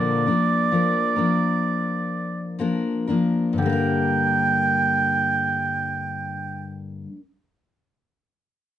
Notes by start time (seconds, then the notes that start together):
Already playing: A#2 D3 F3 A#3 D4 A#4 D5
0.26 F3 A#3 D4 A#4
0.72 F3 A#3 D4 A#4
1.16 F3 A#3 D4 A#4
2.59 F3 A#3 D4 A#4
3.07 F3 A#3 D4 A#4
3.53 G2
3.58 D3 G5
3.62 G3 A#3
3.69 D4 A#4